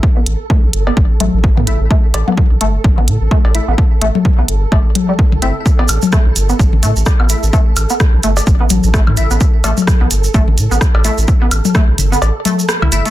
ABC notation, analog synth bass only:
X:1
M:4/4
L:1/16
Q:"Swing 16ths" 1/4=128
K:C
V:1 name="Analog synth bass" clef=bass
z2 A,,, z2 B,,, G,,, z A,,, z A,,, A,,,2 A,, A,,, A,,, | z2 A,,, z2 B,,, G,,, z A,,, A,,, A,, A,,, z A,,, z A,,, | z2 A,,, z2 B,,, G,,, z A,,, z4 C,, G,,, z | z2 A,,, z2 B,,, G,,, z A,,, A,,, A,, A,,, z A,,, z A,,, |
z2 A,,, z2 B,,, G,,, z A,,, z A,,, A,,,2 A,, A,,, A,,, | z2 A,,, z2 B,,, G,,, z A,,, A,,, A,, A,,, z A,,, z A,,, | z2 A,,, z2 B,,, G,,, z A,,, z4 C,, G,,, z |]